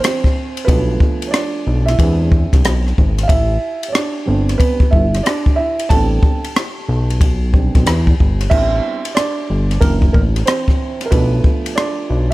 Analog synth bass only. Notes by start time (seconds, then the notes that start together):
0.69 B1
1.67 B1
1.99 E2
2.53 C2
2.65 B1
2.98 G#1
3.29 A1
4.28 G1
4.93 G1
5.91 A1
6.89 B1
7.76 B1
7.86 E2
8.21 G1
8.52 A1
9.50 G1
9.82 F#1
10.14 A1
11.12 B1
12.10 B1